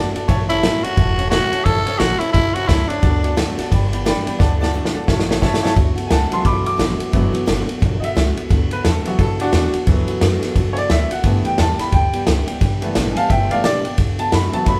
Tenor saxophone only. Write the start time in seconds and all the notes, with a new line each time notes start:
0.50 E4
0.84 F#4
1.30 F#4
1.64 A4
1.99 F#4
2.19 E4
2.33 E4
2.54 F#4
2.68 E4
2.88 D4